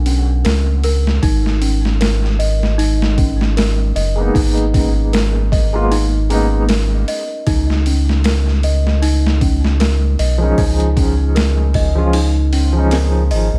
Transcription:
Already playing: analog synth bass B1, celesta C#4 D4 A#4
0.06 celesta C#4, open hi-hat
0.44 analog synth bass C#2, celesta A#4, snare, open hi-hat
0.84 celesta A#4, open hi-hat
1.07 snare
1.23 analog synth bass G#1, celesta D#4, kick, open hi-hat
1.46 snare
1.61 celesta C#4, open hi-hat
1.85 snare
2.01 celesta A#4, snare, open hi-hat
2.24 snare
2.39 celesta D#5, open hi-hat
2.63 snare
2.78 celesta D#4, open hi-hat
3.02 snare
3.17 celesta C#4, kick, open hi-hat
3.41 snare
3.57 celesta A#4, snare, open hi-hat
3.96 analog synth bass F#1, celesta D#5, open hi-hat
4.16 felt piano G#3 A#3 B3
4.21 felt piano D#4
4.34 analog synth bass G#1, celesta D#4, kick, open hi-hat
4.58 closed hi-hat
4.73 celesta C#4, kick, open hi-hat
5.13 celesta A#4, snare, open hi-hat
5.52 celesta D#5, kick, open hi-hat
5.73 felt piano G#3 A#3 B3 F4
5.91 celesta D#4, open hi-hat
6.30 felt piano G#3 A#3 B3 D#4, celesta C#4, open hi-hat
6.69 celesta A#4, snare, open hi-hat
7.08 celesta D#5, open hi-hat
7.47 analog synth bass C#2, celesta D#4, kick, open hi-hat
7.70 snare
7.86 celesta C#4, open hi-hat
8.09 snare
8.24 celesta A#4, snare, open hi-hat
8.47 snare
8.63 celesta D#5, open hi-hat
8.87 snare
9.02 celesta D#4, open hi-hat
9.27 snare
9.41 celesta C#4, kick, open hi-hat
9.64 snare
9.80 celesta A#4, snare, open hi-hat
10.19 analog synth bass B1, celesta D#5, open hi-hat
10.38 felt piano F3 G#3 C#4
10.44 felt piano D#4
10.58 analog synth bass C#2, celesta D#4, kick, open hi-hat
10.80 closed hi-hat
10.97 celesta C#4, kick, open hi-hat
11.35 celesta A#4, snare, open hi-hat
11.74 celesta D#5, kick, open hi-hat
11.95 felt piano F3 G#3 C#4 F4
12.13 celesta D#4, open hi-hat
12.53 celesta C#4, open hi-hat
12.73 felt piano F3 G#3 C#4
12.78 felt piano D#4
12.91 celesta A#4, snare, open hi-hat
13.31 analog synth bass G#1, celesta D#5, open hi-hat
13.53 analog synth bass B1

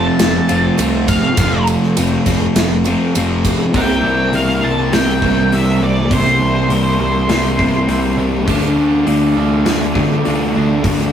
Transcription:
Already playing: overdriven electric guitar F2 C3 F3 A3 C4 F4, lead electric guitar A5
0.19 picked electric bass F1, snare, ride, tambourine
0.48 picked electric bass F1, overdriven electric guitar C3 F3 A3 C4 F4, ride, tambourine
0.53 overdriven electric guitar F2
0.78 picked electric bass C2, overdriven electric guitar F2 C3 F3 A3 C4 F4, ride, tambourine
0.82 overdriven electric guitar F3
1.08 lead electric guitar F5, kick, ride, tambourine
1.37 picked electric bass F1, overdriven electric guitar F2 C3 F3 A3 C4 F4, kick, ride, tambourine
1.67 ride, tambourine
1.83 snare
1.97 picked electric bass F1, overdriven electric guitar F3 A3 C4 F4, ride, tambourine
2.26 picked electric bass F1, overdriven electric guitar A3 C4 F4, kick, ride, tambourine
2.56 picked electric bass F1, snare, ride, tambourine
2.84 overdriven electric guitar C3 F3 C4 F4, ride, tambourine
2.89 overdriven electric guitar F2 A3
3.14 picked electric bass F1, overdriven electric guitar F2 C3 F3 A3 C4 F4, ride, tambourine
3.45 kick, ride
3.73 picked electric bass C2, overdriven electric guitar C3 E3 G3 A#3 C4 E4 A#4, lead electric guitar G5, kick, open hi-hat
4.02 picked electric bass C2, overdriven electric guitar C3 G3 C4
4.32 picked electric bass C2, overdriven electric guitar C3 G3 A#3 C4 E4, lead electric guitar F5, open hi-hat
4.49 snare
4.62 picked electric bass C2, overdriven electric guitar C3 G3 C4, lead electric guitar A5
4.92 picked electric bass C2, overdriven electric guitar C3 G3 A#3 C4 E4, lead electric guitar G5, snare, open hi-hat
5.22 picked electric bass C2, overdriven electric guitar C3 G3 A#3 C4 E4, kick
5.51 picked electric bass C2, overdriven electric guitar C3 G3 A#3 C4 E4, lead electric guitar E5, open hi-hat
5.81 picked electric bass C2, overdriven electric guitar C3 G3 C4, lead electric guitar D5
6.10 picked electric bass C2, overdriven electric guitar C3 G3 A#3 C4 E4, lead electric guitar C5, kick, open hi-hat
6.40 picked electric bass C2, overdriven electric guitar C3 G3 C4
6.69 picked electric bass C2, overdriven electric guitar C3 G3 A#3 C4 E4, open hi-hat
6.99 picked electric bass C2, overdriven electric guitar C3 G3 C4
7.28 picked electric bass C2, overdriven electric guitar C3 G3 A#3 C4 E4, snare, open hi-hat
7.58 picked electric bass C2, overdriven electric guitar C3 G3 A#3 C4 E4, kick
7.87 picked electric bass C2, overdriven electric guitar C3 G3 A#3 C4 E4, open hi-hat
8.17 picked electric bass C2, overdriven electric guitar C3 G3 C4
8.46 picked electric bass D2, overdriven electric guitar D3 A3 D4 F4, kick, open hi-hat
8.50 overdriven electric guitar D4
8.76 picked electric bass D2, overdriven electric guitar D3 A3 D4
9.06 picked electric bass D2, overdriven electric guitar D3 A3 D4 F4, open hi-hat
9.36 picked electric bass D2, overdriven electric guitar D3 A3 D4
9.64 picked electric bass D2, overdriven electric guitar D3 A3 D4 F4, snare, open hi-hat
9.94 picked electric bass D2, overdriven electric guitar D3 A3 D4 F4, kick
10.24 picked electric bass D2, overdriven electric guitar D3 A3 D4 F4, open hi-hat
10.54 picked electric bass D2, overdriven electric guitar D3 A3 D4
10.84 picked electric bass D2, overdriven electric guitar D3 A3 D4 F4, kick, open hi-hat

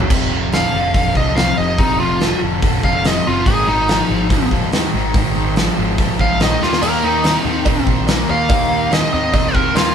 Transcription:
Already playing: picked electric bass F#1, overdriven electric guitar F#2 C#3 F#3
0.00 tonewheel organ C5 D5, floor tom
0.07 tonewheel organ C4 F4 A4 E5, kick, crash
0.11 picked electric bass F1, overdriven electric guitar F2 C3
0.32 overdriven electric guitar F2 C3
0.52 overdriven electric guitar F2 D3, lead electric guitar F5, snare, open hi-hat
0.74 picked electric bass F1, overdriven electric guitar F2 D3
0.94 overdriven electric guitar F2 D3, kick, open hi-hat
1.15 picked electric bass C2, overdriven electric guitar F2 D3, lead electric guitar D#5, kick
1.35 overdriven electric guitar F2 C3, lead electric guitar F5, snare, open hi-hat
1.58 picked electric bass F1, overdriven electric guitar F2 C3, lead electric guitar D#5
1.78 picked electric bass F1, overdriven electric guitar F2 C3, lead electric guitar D#4, kick, open hi-hat
2.00 overdriven electric guitar F2 C3, lead electric guitar F4
2.20 overdriven electric guitar F2 D3, snare, open hi-hat
2.42 picked electric bass F1, overdriven electric guitar F2 D3
2.62 overdriven electric guitar F2 D3, kick, open hi-hat
2.83 picked electric bass F1, overdriven electric guitar F2 D3, lead electric guitar F5, kick
3.04 overdriven electric guitar F2 C3, lead electric guitar D#5, snare, open hi-hat
3.26 picked electric bass F#1, overdriven electric guitar F2 C3, lead electric guitar F4
3.45 picked electric bass G#1, overdriven electric guitar G#2 D#3, tonewheel organ C4 D#4 G#4, lead electric guitar G#4, kick, open hi-hat
3.67 overdriven electric guitar G#2 D#3, lead electric guitar D#4
3.88 overdriven electric guitar G#2 F3, snare, open hi-hat
4.10 picked electric bass G#1, overdriven electric guitar G#2 F3
4.30 overdriven electric guitar G#2 F3, kick, open hi-hat
4.51 picked electric bass D#2, overdriven electric guitar G#2 F3, kick
4.72 overdriven electric guitar G#2 D#3, snare, open hi-hat
4.94 picked electric bass G#1, overdriven electric guitar G#2 D#3
5.14 picked electric bass G#1, overdriven electric guitar G#2 D#3, kick, open hi-hat
5.36 overdriven electric guitar G#2 D#3
5.56 overdriven electric guitar G#2 F3, snare, open hi-hat
5.78 picked electric bass G#1, overdriven electric guitar G#2 F3
5.98 overdriven electric guitar G#2 F3, kick, open hi-hat
6.19 picked electric bass A#1, overdriven electric guitar G#2 F3, lead electric guitar F5, kick
6.40 overdriven electric guitar G#2 D#3, lead electric guitar D#5, snare, open hi-hat
6.60 picked electric bass D#2, overdriven electric guitar D#3 A#3, tonewheel organ A#3 D#4 G4, lead electric guitar F4, snare
6.73 snare
6.82 picked electric bass D#2, overdriven electric guitar D#3 A#3, lead electric guitar A#4, open hi-hat, crash, cowbell
7.04 overdriven electric guitar D#3 A#3, lead electric guitar D#4
7.24 overdriven electric guitar D#3 C4, snare, open hi-hat, cowbell
7.45 picked electric bass D#2, overdriven electric guitar D#3 C4
7.65 overdriven electric guitar D#3 C4, kick, open hi-hat, cowbell
7.87 picked electric bass A#1, overdriven electric guitar D#3 C4, kick
8.07 overdriven electric guitar D#3 A#3, snare, open hi-hat, cowbell
8.29 picked electric bass D#2, overdriven electric guitar D#3 A#3, lead electric guitar F5
8.49 picked electric bass D#2, overdriven electric guitar D#3 A#3, kick, open hi-hat, cowbell
8.70 overdriven electric guitar D#3 A#3
8.91 overdriven electric guitar D#3 C4, lead electric guitar D#5, snare, open hi-hat, cowbell
9.13 picked electric bass D#2, overdriven electric guitar D#3 C4, lead electric guitar D#5
9.33 overdriven electric guitar D#3 C4, lead electric guitar D#5, kick, open hi-hat, cowbell
9.54 picked electric bass D#2, overdriven electric guitar D#3 C4, lead electric guitar A#4, kick
9.74 overdriven electric guitar D#3 A#3, lead electric guitar F4, snare, open hi-hat, cowbell

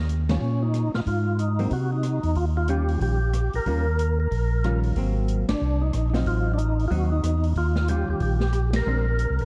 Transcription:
Already playing: tonewheel organ D#2
0.09 closed hi-hat
0.29 hollow-body jazz guitar D#3 G3 C#4 F4, tonewheel organ C#4, snare, ride
0.41 tonewheel organ A#2
0.63 tonewheel organ D#4
0.74 cross-stick, closed hi-hat
0.94 tonewheel organ A#2 F4, snare
1.06 tonewheel organ G#2 F4, kick, open hi-hat
1.39 tonewheel organ D#4, closed hi-hat
1.59 hollow-body jazz guitar F#3 A#3 C4, open hi-hat
1.71 tonewheel organ C3 F#4, kick, open hi-hat
1.92 tonewheel organ D#4
2.03 cross-stick, closed hi-hat
2.23 tonewheel organ E2, open hi-hat
2.35 tonewheel organ D#2 F4, kick, open hi-hat
2.57 tonewheel organ F4
2.68 hollow-body jazz guitar D#3 G3 C#4 F4, tonewheel organ G4, closed hi-hat
2.89 open hi-hat
3.01 tonewheel organ A#1 G4, kick, open hi-hat
3.34 cross-stick, closed hi-hat
3.53 tonewheel organ A#1 A#4, open hi-hat
3.66 tonewheel organ D#2, hollow-body jazz guitar D#3 G3 C#4 F4, kick, open hi-hat
3.99 closed hi-hat
4.20 tonewheel organ A#4
4.31 tonewheel organ A#1, kick, open hi-hat
4.64 hollow-body jazz guitar D#3 G3 C#4 F4, cross-stick, closed hi-hat
4.83 open hi-hat
4.96 tonewheel organ G#1, hollow-body jazz guitar F#3 A#3 C4, kick, open hi-hat
5.28 closed hi-hat
5.48 tonewheel organ G#1 D4, snare, ride
5.61 tonewheel organ C2
5.81 tonewheel organ D#4
5.93 tonewheel organ A#1, cross-stick, closed hi-hat
6.10 hollow-body jazz guitar F#3, tonewheel organ D#4
6.14 hollow-body jazz guitar C4 D#4, tonewheel organ F4, snare, open hi-hat
6.26 tonewheel organ A1 F4, kick, open hi-hat
6.54 tonewheel organ D4
6.58 tonewheel organ D#4, closed hi-hat
6.80 open hi-hat
6.88 tonewheel organ D#2 F4 F#4, hollow-body jazz guitar F#3 C4, kick, open hi-hat
6.92 hollow-body jazz guitar D#4
7.12 tonewheel organ D#4
7.23 tonewheel organ E2, cross-stick, closed hi-hat
7.44 open hi-hat
7.56 tonewheel organ D#2 F4, kick, open hi-hat
7.76 tonewheel organ F4, snare
7.88 hollow-body jazz guitar D#3 G3 C#4 F4, tonewheel organ G4, closed hi-hat
8.08 tonewheel organ D#2 G4
8.20 tonewheel organ A#1 G4, kick, open hi-hat
8.40 snare
8.53 cross-stick, closed hi-hat
8.73 tonewheel organ A#4, snare, ride
8.86 tonewheel organ A#1, hollow-body jazz guitar G#3 C4 D4
9.19 closed hi-hat
9.30 tonewheel organ C2
9.39 tonewheel organ A1, open hi-hat

